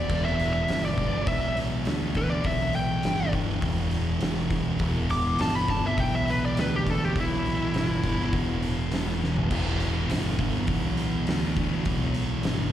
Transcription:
Already playing: distorted electric guitar E3, lead electric guitar D5
0.09 fingered electric bass E1, distorted electric guitar E2 B2 E3, kick, crash
0.25 lead electric guitar E5, snare
0.40 open hi-hat
0.53 lead electric guitar E5
0.68 fingered electric bass G1, snare, open hi-hat
0.85 lead electric guitar D5
0.97 distorted electric guitar E2 B2 E3, kick, open hi-hat
1.27 fingered electric bass B1, lead electric guitar E5, kick, open hi-hat
1.57 snare, open hi-hat
1.85 fingered electric bass D2, snare, open hi-hat
2.15 distorted electric guitar E2 B2 E3, lead electric guitar B4, kick, open hi-hat
2.30 lead electric guitar D5
2.44 fingered electric bass B1, distorted electric guitar E2 B2, lead electric guitar E5, kick, open hi-hat
2.49 distorted electric guitar E3
2.61 snare
2.73 lead electric guitar G5, open hi-hat
3.03 fingered electric bass G1, snare, open hi-hat
3.33 distorted electric guitar E2 B2 E3, kick, open hi-hat
3.49 snare
3.62 fingered electric bass E1, kick, open hi-hat
3.91 open hi-hat
4.21 fingered electric bass E1, snare, open hi-hat
4.50 distorted electric guitar E2 B2 E3, kick, open hi-hat
4.79 fingered electric bass E1, distorted electric guitar E2 B2 E3, kick, open hi-hat
5.10 lead electric guitar D6, open hi-hat
5.39 fingered electric bass G1, lead electric guitar A5, snare, open hi-hat
5.55 lead electric guitar B5
5.68 distorted electric guitar E2 B2 E3, lead electric guitar A5, kick, open hi-hat
5.85 lead electric guitar E5, snare
5.98 fingered electric bass B1, lead electric guitar G5, kick, open hi-hat
6.15 lead electric guitar E5
6.28 lead electric guitar B4, snare, open hi-hat
6.45 lead electric guitar D5
6.57 fingered electric bass D2, lead electric guitar B4, snare, open hi-hat
6.76 lead electric guitar G4
6.86 distorted electric guitar E2 B2 E3, kick, open hi-hat
6.90 lead electric guitar A4
7.05 lead electric guitar G4
7.15 fingered electric bass B1, distorted electric guitar E2 B2 E3, kick, open hi-hat
7.20 lead electric guitar E4
7.33 snare
7.46 open hi-hat
7.74 fingered electric bass G1, snare, open hi-hat
8.03 distorted electric guitar E2 B2 E3, kick, open hi-hat
8.20 snare
8.33 fingered electric bass E1, kick, open hi-hat
8.63 open hi-hat
8.91 fingered electric bass E1, snare, open hi-hat
9.22 distorted electric guitar E2 B2 E3, snare
9.36 floor tom
9.50 fingered electric bass E1, distorted electric guitar E2 B2 E3, kick, crash
9.68 snare
9.80 open hi-hat
10.09 fingered electric bass G1, snare, open hi-hat
10.39 distorted electric guitar E2 B2 E3, kick, open hi-hat
10.55 snare
10.67 fingered electric bass B1, kick, open hi-hat
10.97 snare, open hi-hat
11.27 fingered electric bass D2, snare, open hi-hat
11.56 distorted electric guitar E2 B2 E3, kick, open hi-hat
11.85 fingered electric bass B1, distorted electric guitar E2 B2 E3, kick, open hi-hat
12.02 snare
12.14 open hi-hat
12.43 fingered electric bass G1, snare, open hi-hat

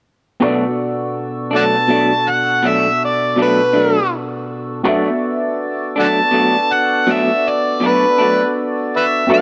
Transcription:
0.40 clean electric guitar B2 F#3 A3 D4, tonewheel organ B2 D4 F#4 A4, upright piano B3 F#4 A4 D5 C#6
1.51 clean electric guitar F#3 A3 D4
1.56 harmonica D5 F#5 A5
1.88 clean electric guitar B2 F#3 A3 D4
2.29 harmonica F#5
2.63 clean electric guitar B2 F#3 A3 D4
2.67 harmonica E5
3.05 harmonica D5
3.36 clean electric guitar B2 F#3 A3 D4
3.42 harmonica B4
3.73 clean electric guitar F#3 A3 D4
4.83 clean electric guitar B2 F#3 A3 D4, upright piano B3 F#4 A4 E5 C#6, tonewheel organ B3 D4 F#4 A4 D5
5.96 clean electric guitar F#3 A3 D4, harmonica D5 F#5 A5
6.31 clean electric guitar B2 F#3 A3 D4
6.72 harmonica F#5
7.07 clean electric guitar B2 F#3 A3 D4
7.12 harmonica E5
7.48 harmonica D5
7.80 clean electric guitar B2 F#3 A3 D4
7.86 harmonica B4
8.18 clean electric guitar F#3 A3 D4
8.96 harmonica B4 E5
9.27 clean electric guitar B2 F#3 A3, upright piano B3 F#4 A4 E5 C#6, tonewheel organ B3 D4 F#4 A4 D5
9.32 clean electric guitar D4, harmonica F#5

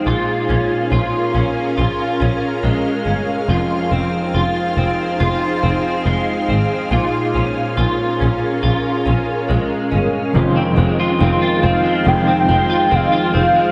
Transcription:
Already playing: clean electric guitar G#3 C4, ambient pad G#4 F5
0.06 double bass A#1, clean electric guitar A#2 F4, ambient pad C#4 A#4
0.49 double bass A#1, clean electric guitar C#4
0.92 double bass A#1, clean electric guitar F4
1.35 double bass A#1, clean electric guitar C#4
1.77 double bass A#1, clean electric guitar F4
2.20 double bass A#1, clean electric guitar C#4
2.63 double bass A#1, clean electric guitar G#3
3.06 double bass G1, clean electric guitar C#4
3.49 double bass F1, clean electric guitar F2 F4, ambient pad D#4 G#4 C5
3.92 double bass F1, clean electric guitar C4
4.34 double bass F1, clean electric guitar F4
4.77 double bass F1, clean electric guitar C4
5.20 double bass F1, clean electric guitar F4
5.63 double bass F1, clean electric guitar C4
6.06 double bass F1, clean electric guitar G#3
6.49 double bass G#1, clean electric guitar C4
6.91 double bass A#1, clean electric guitar A#2 F4, ambient pad C#4 A#4
7.35 double bass A#1, clean electric guitar C#4
7.77 double bass A#1, clean electric guitar F4
8.20 double bass A#1, clean electric guitar C#4
8.63 double bass A#1, clean electric guitar F4
9.06 double bass A#1, clean electric guitar C#4
9.49 double bass A#1, clean electric guitar G#3
9.91 double bass G1, clean electric guitar C#4
10.33 double bass F1, clean electric guitar F2 C3 D#3 G#3 C4, ambient pad D#4 F4 G#4 C5 F5, celesta F4
10.37 clean electric guitar F4
10.56 clean electric guitar C4
10.76 double bass F1, clean electric guitar G#3 C4 F4
10.81 clean electric guitar D#3
11.00 clean electric guitar F4
11.19 double bass F1, clean electric guitar D#3 G#3 C4, celesta A#4
11.23 clean electric guitar C4 F4
11.42 clean electric guitar F4
11.47 celesta D#5
11.62 double bass F1, clean electric guitar G#3 C4 F4, soft synth lead F5
11.84 clean electric guitar G#3
12.05 double bass F1, clean electric guitar F2 C3 D#3 G#3 C4 F4, soft synth lead G5
12.27 clean electric guitar C4
12.48 double bass F1, clean electric guitar G#3 C4 F4
12.53 clean electric guitar D#3
12.70 clean electric guitar F4
12.90 double bass F1, clean electric guitar D#3 G#3 C4
12.94 clean electric guitar C4 F4, soft synth lead F5
13.12 clean electric guitar F4
13.34 double bass F1, clean electric guitar C4 F4
13.38 clean electric guitar D#3 G#3
13.55 clean electric guitar G#3

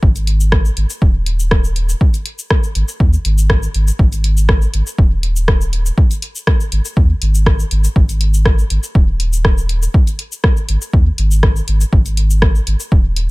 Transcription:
0.03 sub bass G#1, kick
0.16 closed hi-hat, shaker
0.27 closed hi-hat
0.40 shaker
0.52 kick, cross-stick
0.65 shaker
0.77 sub bass G#1, closed hi-hat
0.90 shaker
1.02 sub bass D#1, kick
1.26 closed hi-hat
1.40 shaker
1.51 kick, cross-stick
1.64 shaker
1.76 closed hi-hat
1.89 shaker
2.01 kick
2.14 closed hi-hat, shaker
2.26 closed hi-hat
2.39 shaker
2.50 kick, cross-stick
2.63 shaker
2.75 sub bass G#1, closed hi-hat
2.88 shaker
3.00 sub bass D#2, kick
3.13 shaker
3.25 sub bass G#1, closed hi-hat
3.38 shaker
3.50 kick, cross-stick
3.63 shaker
3.74 sub bass G#1, closed hi-hat
3.88 shaker
3.99 sub bass G#1, kick
4.12 closed hi-hat, shaker
4.24 closed hi-hat
4.37 shaker
4.49 kick, cross-stick
4.62 shaker
4.74 sub bass G#1, closed hi-hat
4.87 shaker
4.98 sub bass D#1, kick
5.23 closed hi-hat
5.36 shaker
5.48 kick, cross-stick
5.61 shaker
5.73 closed hi-hat
5.86 shaker
5.98 kick
6.11 closed hi-hat, shaker
6.22 closed hi-hat
6.36 shaker
6.47 kick, cross-stick
6.60 shaker
6.72 sub bass G#1, closed hi-hat
6.85 shaker
6.97 sub bass D#2, kick
7.22 sub bass G#1, closed hi-hat
7.35 shaker
7.46 kick, cross-stick
7.60 shaker
7.71 sub bass G#1, closed hi-hat
7.84 shaker
7.96 sub bass G#1, kick
8.09 closed hi-hat, shaker
8.21 closed hi-hat
8.34 shaker
8.46 kick, cross-stick
8.59 shaker
8.70 sub bass G#1, closed hi-hat
8.83 shaker
8.95 sub bass D#1, kick
9.20 closed hi-hat
9.33 shaker
9.45 kick, cross-stick
9.58 shaker
9.69 closed hi-hat
9.83 shaker
9.94 kick
10.07 closed hi-hat, shaker
10.19 closed hi-hat
10.32 shaker
10.44 kick, cross-stick
10.57 shaker
10.69 sub bass G#1, closed hi-hat
10.82 shaker
10.93 sub bass D#2, kick
11.18 sub bass G#1, closed hi-hat
11.31 shaker
11.43 kick, cross-stick
11.56 shaker
11.68 sub bass G#1, closed hi-hat
11.81 shaker
11.93 sub bass G#1, kick
12.06 closed hi-hat, shaker
12.17 closed hi-hat
12.30 shaker
12.42 kick, cross-stick
12.55 shaker
12.67 sub bass G#1, closed hi-hat
12.80 shaker
12.92 sub bass D#1, kick
13.16 closed hi-hat

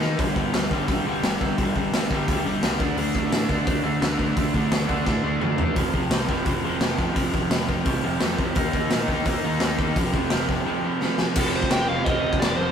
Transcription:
0.00 picked electric bass D#3, overdriven electric guitar D#3 A#3 D#4, snare
0.18 picked electric bass G1, overdriven electric guitar G2 D3 G3, kick, open hi-hat
0.35 picked electric bass G1, overdriven electric guitar G2 D3 G3, kick
0.53 picked electric bass D2, overdriven electric guitar G2 D3 G3, snare, open hi-hat
0.71 picked electric bass G1, overdriven electric guitar G2 D3 G3, kick
0.88 picked electric bass G1, overdriven electric guitar G2 D3 G3, kick, open hi-hat
1.05 picked electric bass G1, overdriven electric guitar G2 D3 G3
1.23 picked electric bass G1, overdriven electric guitar G2 D3 G3, snare, open hi-hat
1.41 picked electric bass G1, overdriven electric guitar G2 D3 G3, kick
1.58 picked electric bass G1, overdriven electric guitar G2 D3 G3, kick, open hi-hat
1.75 picked electric bass G1, overdriven electric guitar G2 D3 G3, kick
1.93 picked electric bass G1, overdriven electric guitar G2 D3 G3, snare, open hi-hat
2.10 picked electric bass G1, overdriven electric guitar G2 D3 G3, kick
2.28 picked electric bass D2, overdriven electric guitar G2 D3 G3, kick, open hi-hat
2.44 picked electric bass G1, overdriven electric guitar G2 D3 G3
2.63 picked electric bass C#2, overdriven electric guitar G2 D3 G3, snare, open hi-hat
2.80 picked electric bass D2, overdriven electric guitar D3 A3 D4, kick
2.96 picked electric bass D2, overdriven electric guitar D3 A3 D4, open hi-hat
3.15 picked electric bass D2, overdriven electric guitar D3 A3 D4, kick
3.30 picked electric bass A2, overdriven electric guitar D3 A3 D4, snare, open hi-hat
3.49 picked electric bass D2, overdriven electric guitar D3 A3 D4, kick
3.66 picked electric bass D2, overdriven electric guitar D3 A3 D4, kick, open hi-hat
3.83 picked electric bass D2, overdriven electric guitar D3 A3 D4
4.01 picked electric bass D2, overdriven electric guitar D3 A3 D4, snare, open hi-hat
4.18 picked electric bass D2, overdriven electric guitar D3 A3 D4, kick
4.36 picked electric bass D2, overdriven electric guitar D3 A3 D4, kick, open hi-hat
4.54 picked electric bass D2, overdriven electric guitar D3 A3 D4, kick
4.72 picked electric bass D2, overdriven electric guitar D3 A3 D4, snare, open hi-hat
4.88 picked electric bass D2, overdriven electric guitar D3 A3 D4, kick
5.06 picked electric bass A2, overdriven electric guitar D3 A3 D4, kick, snare
5.23 picked electric bass D2, overdriven electric guitar D3 A3 D4
5.41 overdriven electric guitar D3 A3 D4, picked electric bass D3, mid tom
5.58 picked electric bass E2, overdriven electric guitar D3 A3 D4, floor tom
5.76 picked electric bass F1, overdriven electric guitar F2 C3 F3, kick, open hi-hat
5.93 picked electric bass F1, overdriven electric guitar F2 C3 F3, kick
6.11 picked electric bass C2, overdriven electric guitar F2 C3 F3, snare, open hi-hat
6.29 picked electric bass F1, overdriven electric guitar F2 C3 F3, kick
6.45 picked electric bass F1, overdriven electric guitar F2 C3 F3, kick, open hi-hat
6.63 picked electric bass F1, overdriven electric guitar F2 C3 F3
6.81 picked electric bass F1, overdriven electric guitar F2 C3 F3, snare, open hi-hat
6.98 picked electric bass F1, overdriven electric guitar F2 C3 F3, kick
7.15 picked electric bass F1, overdriven electric guitar F2 C3 F3, kick, open hi-hat
7.33 picked electric bass F1, overdriven electric guitar F2 C3 F3, kick
7.50 picked electric bass F1, overdriven electric guitar F2 C3 F3, snare, open hi-hat
7.68 picked electric bass F1, overdriven electric guitar F2 C3 F3, kick
7.84 picked electric bass C2, overdriven electric guitar F2 C3 F3, kick, open hi-hat
8.04 picked electric bass F1, overdriven electric guitar F2 C3 F3
8.20 overdriven electric guitar F2 C3 F3, picked electric bass F2, snare, open hi-hat
8.39 picked electric bass F2, overdriven electric guitar F2 C3 F3, kick
8.55 picked electric bass D#2, overdriven electric guitar D#3 A#3 D#4, kick, open hi-hat
8.72 picked electric bass D#2, overdriven electric guitar D#3 A#3 D#4, kick
8.91 picked electric bass A#2, overdriven electric guitar D#3 A#3 D#4, snare, open hi-hat
9.08 picked electric bass D#2, overdriven electric guitar D#3 A#3 D#4, kick
9.25 picked electric bass D#2, overdriven electric guitar D#3 A#3 D#4, kick, open hi-hat
9.44 picked electric bass D#2, overdriven electric guitar D#3 A#3 D#4
9.60 picked electric bass D#2, overdriven electric guitar D#3 A#3 D#4, snare, open hi-hat
9.79 picked electric bass D#2, overdriven electric guitar D#3 A#3 D#4, kick
9.96 picked electric bass F1, overdriven electric guitar F2 C3 F3, kick, open hi-hat
10.13 picked electric bass F1, overdriven electric guitar F2 C3 F3, kick
10.30 picked electric bass F1, overdriven electric guitar F2 C3 F3, snare, open hi-hat
10.48 picked electric bass F1, overdriven electric guitar F2 C3 F3, kick
10.66 overdriven electric guitar F2 C3 F3
10.84 overdriven electric guitar F2 C3 F3
11.01 overdriven electric guitar F2 C3 F3, snare
11.18 overdriven electric guitar F2 C3 F3, snare
11.36 picked electric bass F1, overdriven electric guitar F2 C3 F3, lead electric guitar A4, kick, crash
11.55 lead electric guitar C5
11.63 kick
11.71 picked electric bass F1, overdriven electric guitar F2 C3 F3, lead electric guitar G5, snare, crash
11.89 picked electric bass F1, overdriven electric guitar F2 C3 F3, lead electric guitar F5
12.04 picked electric bass F1, overdriven electric guitar F2 C3, lead electric guitar D#5, kick, crash
12.09 overdriven electric guitar F3
12.24 picked electric bass F1
12.33 kick
12.40 picked electric bass F1, overdriven electric guitar F2 C3 F3, lead electric guitar D5, snare, crash
12.57 picked electric bass F1, overdriven electric guitar F2, lead electric guitar C5
12.61 overdriven electric guitar C3 F3

